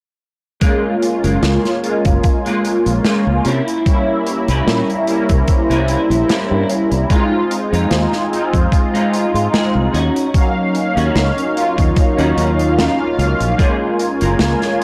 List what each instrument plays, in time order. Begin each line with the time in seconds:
0.60 analog polysynth G#3 A#3 C#4 F4, clean electric guitar G#3 A#3 F4, analog synth pad F4 A#4 G#5, kick, closed hi-hat
1.02 closed hi-hat
1.24 fretless electric bass F#1, clean electric guitar G#3 A#3 F4, closed hi-hat
1.42 fretless electric bass C#2, snare, closed hi-hat
1.65 snare, closed hi-hat
1.82 analog polysynth G#3 A#3 C#4 F4, closed hi-hat
2.05 fretless electric bass F#1, muted clean electric guitar stroke, kick, closed hi-hat
2.23 muted clean electric guitar stroke, kick, closed hi-hat
2.46 clean electric guitar G#3 A#3 F4, closed hi-hat
2.65 closed hi-hat
2.86 fretless electric bass A#1, closed hi-hat
3.05 clean electric guitar G#3 A#3 F4, snare, closed hi-hat
3.27 fretless electric bass C#2
3.45 fretless electric bass C3, clean electric guitar A#3 C#4 E4, analog synth pad E4 C#5 A#5, closed hi-hat
3.68 closed hi-hat
3.85 analog polysynth G3 A#3 C#4 E4, kick, closed hi-hat
4.26 closed hi-hat
4.48 fretless electric bass C2, clean electric guitar A#3 C#4 E4, closed hi-hat
4.67 fretless electric bass A#2, snare, closed hi-hat
4.90 closed hi-hat
5.07 analog polysynth G3 A#3 C#4 E4, analog synth pad C5, closed hi-hat
5.29 fretless electric bass C2, muted clean electric guitar stroke, kick, closed hi-hat
5.48 muted clean electric guitar stroke, kick, closed hi-hat
5.70 fretless electric bass C2, clean electric guitar A#3 C#4 E4, closed hi-hat
5.88 closed hi-hat
6.10 fretless electric bass A#1, closed hi-hat
6.28 clean electric guitar A#3 C#4 E4, snare, closed hi-hat
6.51 fretless electric bass G2
6.70 closed hi-hat
6.92 fretless electric bass C2, closed hi-hat
7.09 analog polysynth G#3 C4 D#4 F4, clean electric guitar G#3 D#4 F4, analog synth pad F4 D#5 G#5, kick, closed hi-hat
7.51 closed hi-hat
7.72 fretless electric bass F2, clean electric guitar G#3 D#4 F4, closed hi-hat
7.91 fretless electric bass D#2, snare, closed hi-hat
8.12 snare, closed hi-hat
8.31 analog polysynth G#3 C4 D#4 F4, closed hi-hat
8.53 fretless electric bass F2, muted clean electric guitar stroke, kick, closed hi-hat
8.72 muted clean electric guitar stroke, kick, closed hi-hat
8.94 clean electric guitar G#3 D#4 F4, closed hi-hat
9.14 closed hi-hat
9.34 fretless electric bass G#2, closed hi-hat
9.53 clean electric guitar G#3 D#4 G#4, snare, closed hi-hat
9.75 fretless electric bass C2
9.93 fretless electric bass D#2, clean electric guitar C#4 D#4 F#4, analog synth pad D#4 C#5, closed hi-hat
10.16 closed hi-hat
10.33 analog polysynth F#3 A#3 C#4 F5, kick, closed hi-hat
10.75 closed hi-hat
10.96 fretless electric bass D#2, clean electric guitar C#4 D#4 F#4, closed hi-hat
11.15 fretless electric bass C#2, snare, closed hi-hat
11.38 closed hi-hat
11.55 analog polysynth F#3 A#3 C#4 F4, closed hi-hat
11.77 fretless electric bass D#2, muted clean electric guitar stroke, kick, closed hi-hat
11.96 muted clean electric guitar stroke, kick, closed hi-hat
12.17 fretless electric bass D#2, clean electric guitar C#4 D#4 F#4, closed hi-hat
12.37 fretless electric bass D#2, closed hi-hat
12.59 closed hi-hat
12.77 clean electric guitar C#4 D#4 F4, snare, closed hi-hat
13.18 fretless electric bass C#2, closed hi-hat
13.40 fretless electric bass A#1, closed hi-hat
13.58 analog polysynth G#3 A#3 C#4 F4, clean electric guitar A#3 F4 G#4, analog synth pad F4 A#4 G#5, kick, closed hi-hat
13.99 closed hi-hat
14.21 fretless electric bass F#1, clean electric guitar A#3 F4 A#4, closed hi-hat
14.39 fretless electric bass C#2, snare, closed hi-hat
14.62 snare, closed hi-hat
14.80 analog polysynth G#3 A#3